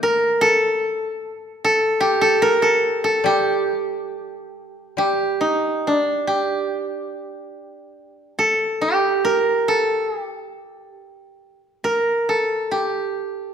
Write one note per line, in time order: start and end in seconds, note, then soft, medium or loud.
0.00 1.24 A2 soft
0.00 0.64 D#3 soft
0.00 0.85 A3 soft
0.00 1.06 A#3 soft
0.00 1.26 D#4 soft
0.00 0.47 A#4 medium
0.41 1.64 A4 medium
1.65 2.21 A4 medium
2.00 3.25 G4 medium
2.21 2.48 A4 medium
2.42 2.68 A#4 medium
2.62 3.04 A4 medium
3.04 4.94 A4 medium
3.24 4.96 G3 soft
3.24 4.98 G4 medium
4.97 7.57 G3 soft
4.97 6.27 G4 medium
5.41 5.93 D#4 medium
5.87 8.30 D4 medium
6.27 8.31 G4 medium
8.39 9.31 A4 medium
8.81 10.20 G4 medium
9.25 9.74 A#4 medium
9.68 10.20 A4 medium
10.20 11.59 G4 medium
11.84 12.35 A#4 medium
12.29 13.54 A4 medium
12.71 13.54 G4 medium